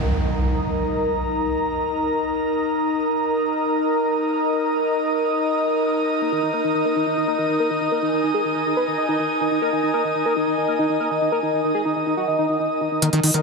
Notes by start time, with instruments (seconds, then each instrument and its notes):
Already playing: ambient pad D#4 A#4, analog synth pad D#4 A#4 A#5 C#6, impact
0.15 analog synth pad D#6
6.21 analog synth lead A#4, ambient pad D#5
6.32 analog synth lead D#4
6.43 analog synth lead D#4
6.53 analog synth lead A#4
6.64 analog synth lead D#4
6.75 analog synth lead D#4
6.85 analog synth lead A#4
6.96 analog synth lead D#4
7.07 analog synth lead D#4
7.17 analog synth lead D#4
7.28 analog synth lead A#4
7.38 analog synth lead D#4
7.49 analog synth lead D#4
7.60 analog synth lead A#4
7.70 analog synth lead D#4
7.77 analog synth lead D#4, analog synth pad G#5
7.92 analog synth lead A#4
8.02 analog synth lead D#4
8.13 analog synth lead D#4
8.24 analog synth lead D#4
8.34 analog synth lead G#4
8.45 analog synth lead D#4
8.55 analog synth lead D#4
8.66 analog synth lead D#4
8.77 analog synth lead B4
8.87 analog synth lead D#4
8.98 analog synth lead D#5
9.09 analog synth lead D#4
9.19 analog synth lead D#4
9.41 analog synth lead D#4
9.51 analog synth lead D#4
9.62 analog synth lead A#4
9.73 analog synth lead D#4
9.83 analog synth lead D#4
9.94 analog synth lead A#4
10.04 analog synth lead D#4
10.15 analog synth lead D#4
10.26 analog synth lead A#4
10.36 analog synth lead D#4
10.47 analog synth lead D#4
10.58 analog synth lead D#4
10.68 analog synth lead A#4
10.79 analog synth lead D#4
10.90 analog synth lead D#4
11.00 analog synth lead A#4
11.11 analog synth lead D#4
11.21 analog synth lead D#4
11.32 analog synth lead A#4
11.43 analog synth lead D#4
11.53 analog synth lead D#4
11.64 analog synth lead D#4
11.75 analog synth lead G#4
11.85 analog synth lead D#4
11.96 analog synth lead D#4
12.06 analog synth lead D#4
12.17 analog synth lead F#4
12.28 analog synth lead D#4
12.38 analog synth lead D#4
12.49 analog synth lead D#4
12.60 analog synth lead D#4
12.81 analog synth lead D#4
12.92 analog synth lead D#4
13.02 acid bass D#3, ambient pad D#4 A#4, analog synth lead A#4, closed hi-hat, riser
13.13 analog synth bass D#1, acid bass D#3, analog synth lead D#4, closed hi-hat
13.24 acid bass D#3, analog synth lead D#4, open hi-hat
13.32 analog synth bass D#1, acid bass D#3, analog synth lead A#4, analog synth pad A#5, closed hi-hat